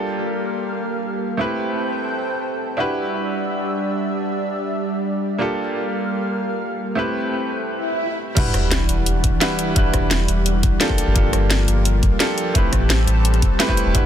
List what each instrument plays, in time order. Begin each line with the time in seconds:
Already playing: analog synth pad G3 A#3 F5, grand piano A#3 D4 F4 G4 A4
1.37 grand piano A3 C4 E4 G4 B4, analog synth pad C4 A4 G5
2.77 analog synth pad G3 D4 E5, grand piano D4 E4 F#4 G4 B4
5.38 grand piano A#3 D4 F4 G4 A4, analog synth pad A#3 F5
6.95 grand piano A3 C4 E4 G4 B4, analog synth pad C4 A4 G5
7.67 swell
8.35 sub bass E1, analog synth pad E3 G3 D4, grand piano G3 D4 E4 F#4 B4, kick, closed hi-hat, crash, sub drop
8.54 sub bass E1, cross-stick, closed hi-hat
8.72 snare, closed hi-hat
8.89 sub bass E1, closed hi-hat
9.06 closed hi-hat
9.24 sub bass E1, kick, closed hi-hat
9.40 grand piano G3 D4 E4 F#4 B4, snare, closed hi-hat
9.59 closed hi-hat
9.75 grand piano G3 D4 E4 F#4 B4, kick, closed hi-hat
9.94 sub bass E1, kick, cross-stick, closed hi-hat
10.11 snare, closed hi-hat
10.28 sub bass E1, closed hi-hat
10.46 closed hi-hat
10.63 kick, closed hi-hat
10.80 grand piano A#3 D4 F4 G4 A4, snare, closed hi-hat
10.89 kick, cross-stick
10.98 analog synth pad F3 A#3, closed hi-hat
11.07 sub bass G1
11.14 sub bass G1, grand piano A#3 D4 F4 G4 A4, kick, closed hi-hat
11.33 sub bass G1, cross-stick, closed hi-hat
11.51 snare, closed hi-hat
11.68 sub bass G1, closed hi-hat
11.85 closed hi-hat
12.03 sub bass G1, kick, closed hi-hat
12.19 grand piano A#3 D4 F4 G4 A4, snare, closed hi-hat
12.38 closed hi-hat
12.54 analog synth pad G3 C4 A4, grand piano A3 C4 E4 G4 B4, kick, closed hi-hat
12.73 sub bass A1, kick, cross-stick, closed hi-hat
12.90 snare, closed hi-hat
13.07 sub bass A1, closed hi-hat
13.25 closed hi-hat
13.34 closed hi-hat
13.42 kick, closed hi-hat
13.59 grand piano A3 C4 E4 G4 B4, snare, closed hi-hat
13.68 grand piano A3 C4 E4 G4 B4, kick, cross-stick
13.77 closed hi-hat
13.86 sub bass E1
13.93 sub bass E1, analog synth pad E3 G3 D4, grand piano G3 D4 E4 F#4 B4, kick, closed hi-hat